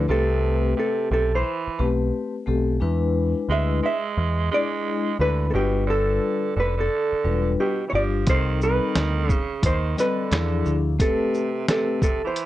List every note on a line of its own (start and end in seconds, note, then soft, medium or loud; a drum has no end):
0.08 0.73 C2 loud
0.08 0.72 C3 medium
0.08 1.09 A3 medium
0.08 1.10 C4 medium
0.08 1.10 G4 medium
0.08 0.78 A4 loud
0.08 1.10 B4 medium
0.76 1.08 C3 medium
0.76 1.10 A4 medium
1.11 1.42 B1 medium
1.11 1.31 C3 medium
1.11 1.34 A4 medium
1.34 1.97 E3 medium
1.34 1.98 C5 medium
1.68 muted picked electric bass stroke soft
1.79 2.10 B1 medium
1.79 2.34 A3 medium
1.79 2.34 C4 medium
1.79 2.34 G4 medium
1.79 2.34 B4 medium
2.46 2.78 B1 medium
2.46 2.74 A3 medium
2.46 2.75 C4 medium
2.46 2.75 G4 medium
2.46 2.75 A4 medium
2.80 3.33 E2 loud
2.80 3.82 G#3 medium
2.80 3.82 D4 medium
2.80 3.82 E4 medium
2.80 3.83 B4 loud
3.49 3.80 D2 medium
3.49 3.81 G#3 medium
3.49 3.83 E5 medium
3.83 4.47 G#3 medium
3.83 4.54 E5 medium
4.17 4.48 E2 medium
4.51 5.16 G#3 loud
4.51 5.06 G#3 medium
4.51 5.06 D4 medium
4.51 5.07 E4 medium
4.51 5.07 G#4 medium
4.51 5.21 D5 loud
5.19 5.50 D2 medium
5.19 5.46 D3 medium
5.19 5.47 G#3 medium
5.19 5.47 D4 medium
5.19 5.48 E4 medium
5.19 5.48 B4 medium
5.19 5.50 B4 loud
5.49 5.85 B2 medium
5.49 5.52 C3 medium
5.49 5.55 A4 medium
5.54 6.18 G1 loud
5.54 6.55 G3 medium
5.54 6.56 D4 medium
5.54 6.56 F4 medium
5.54 5.90 G4 medium
5.54 6.56 B4 medium
5.87 6.52 D3 medium
5.87 6.59 A4 loud
6.56 6.87 F1 medium
6.56 6.76 D3 medium
6.56 6.80 B4 medium
6.77 7.54 D3 medium
6.77 7.60 A4 medium
7.13 muted picked electric bass stroke soft
7.24 7.55 E1 medium
7.24 7.79 G3 medium
7.24 7.79 D4 medium
7.24 7.79 F4 medium
7.24 7.80 B4 medium
7.60 7.86 B2 medium
7.60 7.86 G4 medium
7.87 7.92 E3 medium
7.87 7.94 C#5 medium
7.92 8.24 G1 medium
7.92 8.25 F3 medium
7.92 8.20 G3 medium
7.92 8.20 D4 medium
7.92 8.20 F4 medium
7.92 8.20 G4 medium
7.92 8.26 D5 loud
8.26 8.79 C2 loud
8.26 8.59 D#3 medium
8.26 9.28 G3 medium
8.26 9.28 C4 medium
8.26 9.28 D#4 medium
8.26 9.28 A4 medium
8.26 8.63 C5 medium
8.26 kick medium
8.26 closed hi-hat medium
8.61 9.30 D#3 medium
8.61 9.36 B4 medium
8.61 shaker soft
8.95 9.26 D2 medium
8.95 snare loud
8.95 closed hi-hat medium
9.29 9.60 C#3 medium
9.29 kick medium
9.29 shaker soft
9.36 9.66 A4 medium
9.63 9.94 D#2 medium
9.63 9.96 D#3 medium
9.63 10.00 C5 medium
9.63 kick medium
9.63 closed hi-hat loud
9.97 10.83 D3 medium
9.97 10.31 G3 medium
9.97 10.31 C4 medium
9.97 10.32 A4 medium
9.97 11.04 B4 medium
9.97 10.32 D#5 medium
9.97 snare soft
9.97 closed hi-hat medium
9.97 shaker medium
10.31 10.63 E2 medium
10.31 10.60 F3 medium
10.31 10.60 D4 medium
10.31 10.60 E4 medium
10.31 10.61 G#4 medium
10.31 snare loud
10.31 closed hi-hat medium
10.65 10.97 D2 medium
10.65 10.93 F3 medium
10.65 10.93 D4 medium
10.65 10.93 E4 medium
10.65 10.93 G#4 medium
10.65 shaker soft
10.99 11.64 C3 medium
10.99 12.00 A3 medium
10.99 12.00 C4 medium
10.99 12.01 G4 medium
10.99 11.69 A4 medium
10.99 12.01 B4 medium
10.99 kick medium
10.99 closed hi-hat medium
11.34 shaker soft
11.68 12.00 C3 medium
11.68 12.02 A4 medium
11.68 snare loud
11.68 closed hi-hat medium
12.02 12.22 C3 medium
12.02 12.25 A4 medium
12.02 kick medium
12.02 shaker medium
12.24 12.46 E3 medium
12.24 12.46 C5 medium
12.36 closed hi-hat medium